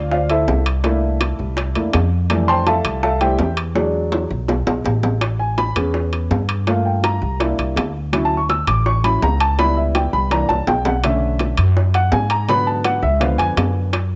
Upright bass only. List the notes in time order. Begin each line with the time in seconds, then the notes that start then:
Already playing: D2
0.48 C2
1.39 C2
1.76 E2
1.94 F2
2.84 C2
3.39 E2
4.30 B1
4.66 B1
4.84 A1
5.76 E2
6.31 G2
7.22 C2
7.58 C2
7.76 D2
8.67 A1
9.22 C#2
10.13 C2
10.49 C2
10.67 B1
11.58 F#2
12.12 G#2
13.03 C#2
13.38 F2
13.57 F#2